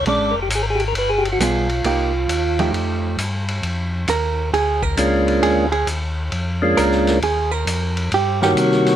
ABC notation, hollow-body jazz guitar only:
X:1
M:4/4
L:1/8
Q:"Swing" 1/4=134
K:Eb
V:1 name="Hollow-body jazz guitar"
[A,^CD] z4 z [G,=B,FA] z | [B,EG] z2 [F,=A,EG]3 z2 | z2 B2 A B3 | A A z4 B2 |
A B3 G G z2 |]